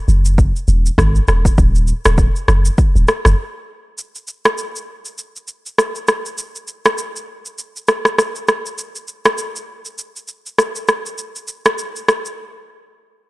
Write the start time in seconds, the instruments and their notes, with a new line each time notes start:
0.08 sub bass F#1, shaker
0.25 shaker
0.38 kick, shaker
0.56 shaker
0.68 sub bass E1, shaker
0.86 shaker
0.98 sub bass G#1, kick, cross-stick, shaker
1.15 shaker
1.28 sub bass E1, cross-stick, shaker
1.45 kick, shaker
1.58 sub bass D#1, kick, shaker
1.75 shaker
1.88 shaker
2.05 sub bass D#1, cross-stick, shaker
2.18 kick, shaker
2.36 shaker
2.48 sub bass F#1, cross-stick, shaker
2.65 shaker
2.78 kick, shaker
2.96 sub bass D#1, shaker
3.08 cross-stick, shaker
3.25 sub bass F#1, cross-stick, shaker
3.98 shaker
4.15 shaker
4.27 shaker
4.45 cross-stick, shaker
4.58 shaker
4.76 shaker
5.05 shaker
5.18 shaker
5.36 shaker
5.48 shaker
5.66 shaker
5.78 cross-stick, shaker
5.95 shaker
6.08 cross-stick, shaker
6.26 shaker
6.38 shaker
6.55 shaker
6.68 shaker
6.85 cross-stick, shaker
6.98 shaker
7.16 shaker
7.45 shaker
7.58 shaker
7.76 shaker
7.88 cross-stick, shaker
8.05 cross-stick, shaker
8.18 cross-stick, shaker
8.36 shaker
8.48 cross-stick, shaker
8.66 shaker
8.78 shaker
8.95 shaker
9.08 shaker
9.25 cross-stick, shaker
9.38 shaker
9.56 shaker
9.85 shaker
9.98 shaker
10.16 shaker
10.28 shaker
10.46 shaker
10.58 cross-stick, shaker
10.76 shaker
10.88 cross-stick, shaker
11.06 shaker
11.18 shaker
11.36 shaker
11.48 shaker
11.66 cross-stick, shaker
11.78 shaker
11.96 shaker
12.08 cross-stick, shaker
12.25 shaker